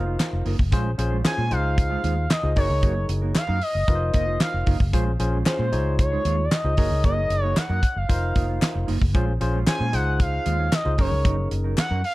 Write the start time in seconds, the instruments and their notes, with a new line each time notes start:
Already playing: fingered electric bass F1, tine electric piano D#4 F4 A#4 C5, analog synth lead F5
0.06 clean electric guitar A#3 D#4 F4 C5
0.20 snare, clap, closed hi-hat
0.32 fingered electric bass F1, muted clean electric guitar stroke
0.45 fingered electric bass F#1, clean electric guitar A#3 D#4 F4 A#4, open hi-hat
0.58 fingered electric bass F1, muted clean electric guitar stroke, kick
0.71 fingered electric bass A#1, clean electric guitar G#3 C#4 F4 C5, tine electric piano C#4 F4 G#4 C5, kick, closed hi-hat
0.85 muted clean electric guitar stroke
0.98 fingered electric bass A#1, tine electric piano C#4 F4 G#4 C5, muted clean electric guitar stroke, closed hi-hat
1.10 clean electric guitar G#3 C#4 F4 C5
1.24 tine electric piano C#4 F4 G#4 C5, analog synth lead G#5, snare, clap, closed hi-hat
1.37 fingered electric bass A#2, clean electric guitar G#3 C#4 F4 C5
1.51 fingered electric bass C#2, tine electric piano D#4 F4 G#4 C5, analog synth lead F5, muted clean electric guitar stroke, closed hi-hat
1.77 muted clean electric guitar stroke, kick, closed hi-hat
1.90 clean electric guitar G#3 D#4 F4 C5
2.03 fingered electric bass D#2, clean electric guitar G#3 D#4 F4 C5, closed hi-hat
2.16 muted clean electric guitar stroke
2.29 analog synth lead D#5, muted clean electric guitar stroke, snare, clap, closed hi-hat
2.43 fingered electric bass C#2, tine electric piano D#4 F4 G#4 C5, muted clean electric guitar stroke
2.56 fingered electric bass F#1, clean electric guitar A#3 D#4 F#4 A#4, tine electric piano D#4 G#4 A#4 C#5, analog synth lead C#5, kick, open hi-hat
2.69 fingered electric bass C#2, muted clean electric guitar stroke
2.82 fingered electric bass F#1, clean electric guitar A#3 D#4 F#4 A#4, kick, closed hi-hat
2.96 muted clean electric guitar stroke
3.09 fingered electric bass F#1, muted clean electric guitar stroke, closed hi-hat
3.22 clean electric guitar A#3 D#4 F#4 A#4
3.35 analog synth lead F5, snare, clap, closed hi-hat
3.48 fingered electric bass F#2, clean electric guitar A#3 D#4 F#4 A#4
3.62 analog synth lead D#5, open hi-hat
3.74 fingered electric bass F#1, muted clean electric guitar stroke
3.87 fingered electric bass F1, tine electric piano D#4 F4 A#4 B4, muted clean electric guitar stroke, kick, closed hi-hat
3.95 tine electric piano C5
4.01 muted clean electric guitar stroke
4.13 fingered electric bass F1, clean electric guitar A#3 D#4 F4 A#4, analog synth lead D#5, kick, closed hi-hat
4.27 clean electric guitar A#3 D#4 F4 C5
4.40 analog synth lead F5, snare, clap, closed hi-hat
4.53 fingered electric bass F1, muted clean electric guitar stroke
4.66 fingered electric bass F#1, clean electric guitar A#3 D#4 F4 A#4, kick, open hi-hat
4.80 fingered electric bass F1, muted clean electric guitar stroke, kick
4.93 fingered electric bass A#1, clean electric guitar G#3 C#4 F4 C5, tine electric piano C#4 F4 G#4 C5, kick, closed hi-hat
5.06 muted clean electric guitar stroke
5.19 fingered electric bass A#1, tine electric piano C#4 F4 G#4 C5, muted clean electric guitar stroke, closed hi-hat
5.33 clean electric guitar G#3 C#4 F4 C5
5.46 tine electric piano C#4 F4 G#4 C5, analog synth lead C5, snare, clap, closed hi-hat
5.59 fingered electric bass A#2, clean electric guitar G#3 C#4 F4 C5
5.72 fingered electric bass C#2, tine electric piano D#4 F4 G#4 C#5, closed hi-hat
5.85 muted clean electric guitar stroke
5.98 analog synth lead C#5, muted clean electric guitar stroke, kick, closed hi-hat
6.11 clean electric guitar G#3 D#4 F4 C5
6.25 fingered electric bass D#2, clean electric guitar G#3 D#4 F4 C5, closed hi-hat
6.38 muted clean electric guitar stroke
6.45 analog synth lead D5
6.52 analog synth lead D#5, snare, clap, closed hi-hat
6.64 fingered electric bass C#2, tine electric piano D#4 F4 G#4 C5, muted clean electric guitar stroke
6.77 fingered electric bass F#1, clean electric guitar A#3 D#4 F#4 A#4, tine electric piano D#4 G#4 A#4 C#5, kick, open hi-hat
6.91 fingered electric bass C#2, muted clean electric guitar stroke
7.03 fingered electric bass F#1, clean electric guitar A#3 D#4 F#4 A#4, analog synth lead D#5, kick, closed hi-hat
7.17 muted clean electric guitar stroke
7.30 fingered electric bass F#1, muted clean electric guitar stroke, closed hi-hat
7.43 clean electric guitar A#3 D#4 F#4 A#4, analog synth lead C#5
7.57 analog synth lead F#5, muted fingered electric bass stroke, snare, clap, closed hi-hat
7.69 fingered electric bass F#2, clean electric guitar A#3 D#4 F#4 A#4
7.82 muted clean electric guitar stroke, kick, closed hi-hat
7.96 fingered electric bass F#1, analog synth lead F5, muted clean electric guitar stroke
8.09 fingered electric bass F1, tine electric piano D#4 F4 A#4 C5, muted clean electric guitar stroke, kick, closed hi-hat
8.22 muted clean electric guitar stroke
8.35 fingered electric bass F1, clean electric guitar A#3 D#4 F4 A#4, kick, closed hi-hat
8.48 clean electric guitar A#3 D#4 F4 C5
8.61 muted clean electric guitar stroke, snare, clap, closed hi-hat
8.63 clap
8.74 fingered electric bass F1, muted clean electric guitar stroke
8.87 fingered electric bass F#1, clean electric guitar A#3 D#4 F4 A#4, open hi-hat
9.01 fingered electric bass F1, muted clean electric guitar stroke, kick
9.14 fingered electric bass A#1, clean electric guitar G#3 C#4 F4 C5, tine electric piano C#4 F4 G#4 C5, kick, closed hi-hat
9.27 muted clean electric guitar stroke
9.40 fingered electric bass A#1, tine electric piano C#4 F4 G#4 C5, muted clean electric guitar stroke, closed hi-hat
9.54 clean electric guitar G#3 C#4 F4 C5
9.67 tine electric piano C#4 F4 G#4 C5, analog synth lead G#5, muted fingered electric bass stroke, snare, clap, closed hi-hat
9.80 fingered electric bass A#2, clean electric guitar G#3 C#4 F4 C5
9.93 fingered electric bass C#2, tine electric piano D#4 F4 G#4 C5, analog synth lead F#5, closed hi-hat
10.19 analog synth lead F5, muted clean electric guitar stroke, kick, closed hi-hat
10.33 muted clean electric guitar stroke
10.45 fingered electric bass D#2, clean electric guitar G#3 D#4 F4 C5, closed hi-hat
10.59 clean electric guitar G#3 D#4 F4 C#5
10.72 analog synth lead D#5, snare, clap, closed hi-hat
10.85 fingered electric bass C#2, tine electric piano D#4 F4 G#4 C5, muted clean electric guitar stroke
10.98 fingered electric bass F#1, clean electric guitar F#3 C#4 D#4 A#4, tine electric piano C#4 D#4 G#4 A#4, analog synth lead C#5, kick, open hi-hat
11.12 fingered electric bass C#2, muted clean electric guitar stroke
11.24 fingered electric bass F#1, clean electric guitar F#3 C#4 D#4 A#4, kick, closed hi-hat
11.38 muted clean electric guitar stroke
11.51 fingered electric bass F#1, muted clean electric guitar stroke, closed hi-hat
11.64 clean electric guitar F#3 C#4 D#4 A#4
11.77 analog synth lead F#5, muted clean electric guitar stroke, snare, clap, closed hi-hat
11.79 clap
11.91 fingered electric bass F#2, clean electric guitar F#3 C#4 D#4 A#4
12.03 analog synth lead F5, muted clean electric guitar stroke, open hi-hat